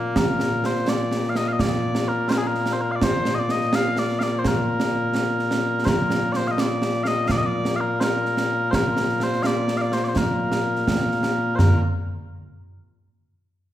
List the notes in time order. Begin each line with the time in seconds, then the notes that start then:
Already playing: A#2 A#3
0.16 A#4, concert bass drum, snare
0.40 snare
0.64 C5, snare
0.76 snare
0.88 D5, snare
1.11 snare
1.24 snare
1.30 F5
1.35 D#5, snare
1.48 F5
1.53 D#5
1.59 D5, concert bass drum, snare
1.95 snare
2.08 A#4
2.29 A#4 C5, snare
2.38 G#4
2.47 A#4
2.55 snare
2.66 snare
2.73 C5
2.81 A#4
2.91 F5
2.96 D5
3.02 C5, concert bass drum, snare
3.25 snare
3.35 D#5
3.39 D5
3.49 D#5, snare
3.61 snare
3.73 F5, snare
3.97 D5, snare
4.09 snare
4.19 D5 F5, snare
4.39 C5
4.45 A#4, concert bass drum, snare
4.80 snare
5.15 snare
5.39 snare
5.51 snare
5.85 A#4 C5, concert bass drum, snare
6.11 snare
6.32 D5, snare
6.37 C5
6.46 F5, snare
6.51 D#5
6.58 D5, snare
6.82 snare
6.93 snare
7.04 D#5 F5, snare
7.28 D5 F5, concert bass drum, snare
7.38 D#5
7.46 D5
7.65 snare
7.76 F5
7.80 A#4
8.00 A#4 C5, snare
8.25 snare
8.37 snare
8.71 C5, concert bass drum, snare
8.75 A#4
8.97 snare
9.09 snare
9.20 C5, snare
9.33 snare
9.43 D5 F5, snare
9.68 snare
9.77 F5, snare
9.82 D5
9.92 C5, snare
10.04 D5, snare
10.09 C5
10.16 A#4, concert bass drum, snare
10.52 snare
10.76 snare
10.87 concert bass drum, snare
11.11 snare
11.23 snare
11.55 A#4 C5, snare, mid tom